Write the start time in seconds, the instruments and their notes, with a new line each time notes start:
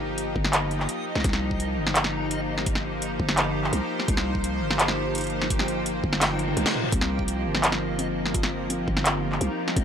Already playing: 808-style bass G1, synth drone F3 A#3 D#4 G4, synth texture D#4 D#5
0.18 closed hi-hat
0.36 808-style bass G1, kick
0.45 snare
0.53 clap, closed hi-hat
0.71 closed hi-hat
0.80 clap
0.89 closed hi-hat
1.15 808-style bass C2, snare
1.20 snare
1.24 808-style bass C2, synth texture G4, kick, snare, closed hi-hat
1.29 snare
1.33 snare
1.51 synth drone C5, kick
1.60 closed hi-hat
1.78 808-style bass G1
1.87 snare
1.95 clap, closed hi-hat
2.04 snare
2.31 closed hi-hat
2.58 snare
2.66 kick, closed hi-hat
2.75 snare
3.02 closed hi-hat
3.20 808-style bass G1, kick
3.29 snare
3.37 clap, closed hi-hat
3.64 clap
3.73 808-style bass C2, closed hi-hat
4.00 snare
4.08 808-style bass C2, kick, closed hi-hat
4.17 snare
4.35 kick
4.44 closed hi-hat
4.61 808-style bass G1
4.71 snare
4.79 clap, closed hi-hat
4.88 snare
5.15 closed hi-hat
5.18 closed hi-hat
5.21 closed hi-hat
5.30 closed hi-hat
5.42 snare
5.50 kick, closed hi-hat
5.59 snare
5.68 closed hi-hat
5.86 closed hi-hat
6.04 808-style bass G1, kick
6.13 snare
6.21 snare, clap, closed hi-hat, reverse cymbal
6.30 high tom
6.39 closed hi-hat
6.48 mid tom
6.57 808-style bass C2, closed hi-hat, mid tom
6.66 snare
6.75 mid tom
6.84 mid tom
6.92 808-style bass C2, kalimba C4, synth texture D#4 D#5, kick, closed hi-hat
7.01 snare
7.19 synth drone G4, kick
7.28 closed hi-hat
7.46 808-style bass G1
7.55 snare
7.64 clap, closed hi-hat
7.72 synth drone F4, snare
7.99 kalimba C4, closed hi-hat
8.26 snare
8.34 kalimba F4, kick, closed hi-hat
8.43 snare
8.70 kalimba C4, closed hi-hat
8.88 808-style bass G1, kick
8.97 snare
9.06 clap, closed hi-hat
9.32 clap
9.41 808-style bass C2, closed hi-hat
9.68 snare
9.76 808-style bass C2, kalimba C4, synth texture C5, kick, closed hi-hat